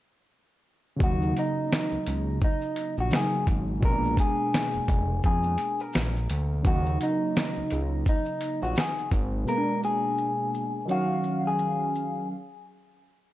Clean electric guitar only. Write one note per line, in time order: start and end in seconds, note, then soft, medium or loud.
1.03 1.34 F#4 medium
1.39 2.39 D#4 medium
2.44 2.95 D#4 medium
3.00 3.13 F#4 medium
3.16 3.46 G#4 medium
3.85 4.16 A#4 medium
4.20 5.21 G#4 medium
5.26 5.81 G#4 medium
5.81 6.62 A#4 medium
6.67 6.98 F#4 loud
7.03 8.04 D#4 medium
8.09 8.60 D#4 medium
8.63 8.78 F#4 medium
8.78 9.09 G#4 medium
9.49 9.80 A#4 loud
9.85 10.86 G#4 medium
10.91 11.42 F#4 medium
11.47 12.28 G#4 medium